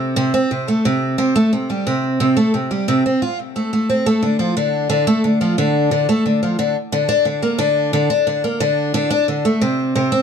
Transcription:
twelve-string acoustic guitar
Already playing: C3
0.16 C3
0.34 C4
0.51 C3
0.68 A3
0.85 C3
1.18 C3
1.36 A3
1.53 C3
1.70 G3
1.87 C3
2.20 C3
2.37 A3
2.54 C3
2.71 G3
2.88 C3
3.06 C4
3.22 F4
3.56 A3
3.73 A3
3.90 C4
4.06 A3
4.22 D3
4.39 F3
4.57 D3
4.90 D3
5.07 A3
5.24 D3
5.41 F3
5.58 D3
5.91 D3
6.09 A3
6.26 D3
6.43 F3
6.59 D3
6.92 D3
7.09 D4
7.25 D3
7.42 A#3
7.59 D3
7.93 D3
8.10 D4
8.27 D3
8.44 A#3
8.60 D3
8.94 D3
9.11 D4
9.28 D3
9.45 A3
9.61 C3
9.96 C3
10.12 C4

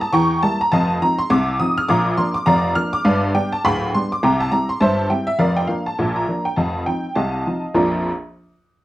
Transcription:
honky-tonk piano
0.01 A5
0.13 E2 E3 G5 A#5 C#6
0.43 G3 A#3 E4 A5
0.61 A#5
0.72 F1 F2 D#5 F5 A5
1.02 F3 C4 D#4 A#5
1.18 C6
1.30 C2 C3 D6
1.59 F3 C4 D#4 D#6
1.78 F6
1.88 A#1 A#2 F5 A#5 D6
2.17 F3 A#3 D4 C6
2.34 D6
2.46 F1 F2 D5 F5 A#5
2.75 F3 A#3 D4 F6
2.93 D6
3.05 G1 G2 B4 D5 F5
3.35 G3 B3 D4 G5
3.52 A5
3.64 D1 D2 F5 G5 B5
3.94 G3 B3 D4 C6
4.12 D6
4.23 C2 C3 E5 G5 A#5
4.40 A5
4.52 G3 C4 E4 A#5
4.69 C6
4.81 G1 G2 C5 E5 A5
5.10 G3 C4 E4 G5
5.27 E5
5.39 F1 F2 A#4 D5 F5
5.57 G5
5.67 F3 A#3 D4 F5
5.86 A5
5.99 A#1 A#2
6.16 A#5
6.28 F3 A#3 D4
6.45 G5
6.56 F1 F2 D#5 F5 A5
6.86 F3 C4 D#4 G5
7.15 C2 C3 D#5 F5 A5
7.47 F3 C4 D#4
7.74 A#1 F2 F3 A#3 D4 F4 A#5

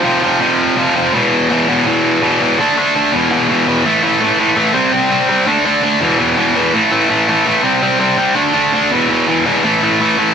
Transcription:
distorted electric guitar
0.04 F2 C3 F3
0.22 F2 C3 F3
0.40 F2 C3 F3
0.77 F2 C3 F3
0.95 F2 C3 F3
1.13 E2 B2 E3
1.50 E2 B2 E3
1.68 E2 B2 E3
1.86 E2 B2 E3
2.22 E2 B2 E3
2.41 E2 B2 E3
2.59 D3 A3 D4
2.76 D3 A3 D4
2.95 D3 A3 D4
3.12 E2 B2 E3
3.30 E2 B2 E3
3.49 E2 B2 E3
3.67 E2 B2 E3
3.85 A2 E3 A3
4.03 A2 E3 A3
4.21 A2 E3 A3
4.39 A2 E3 A3
4.56 A2 E3 A3
4.73 C3 G3 C4
4.92 C3 G3 C4
5.10 C3 G3 C4
5.28 C3 G3 C4
5.46 D3 A3 D4
5.64 D3 A3 D4
5.82 D3 A3 D4
6.00 E2 B2 E3
6.18 E2 B2 E3
6.37 E2 B2 E3
6.55 E2 B2 E3
6.73 A2 E3 A3
6.91 A2 E3 A3
7.09 A2 E3 A3
7.28 A2 E3 A3
7.46 A2 E3 A3
7.63 C3 G3 C4
7.82 C3 G3 C4
7.99 C3 G3 C4
8.18 C3 G3 C4
8.35 D3 A3 D4
8.54 D3 A3 D4
8.73 D3 A3 D4
8.91 E2 B2 E3
9.09 E2 B2 E3
9.27 E2 B2 E3
9.46 E2 B2 E3
9.63 A2 E3 A3
9.82 A2 E3 A3
10.00 A2 E3 A3
10.18 A2 E3 A3

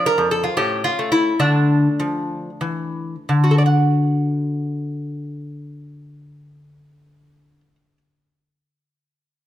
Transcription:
lute
Already playing: F3 D4
0.06 A#4
0.18 F2
0.31 A4
0.44 F4
0.57 A2 C#4 G4
0.84 F4
0.99 A3
1.12 E4
1.40 D3 A3 D4
2.00 F3
2.61 E3
3.29 D3
3.44 F#4
3.51 A4
3.58 D5
3.66 F#5

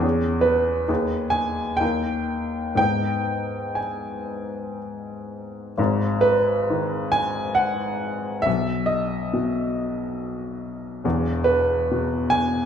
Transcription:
upright piano
Already playing: E2
0.03 C#4 G#4
0.41 B4
0.88 D#2 D#4 G#4
1.30 G#5
1.77 D#2 D#4 G5
1.81 A#4
2.75 G#2 B3 D#4 B4 G5
3.75 G#5
5.78 G#1 G#2
6.21 B4
6.70 D#3
7.12 G#5
7.55 F#5
8.42 E5
8.46 B1
8.86 D#5
9.34 B2
11.04 E1 E2
11.44 B4
11.91 B2
12.30 G#5

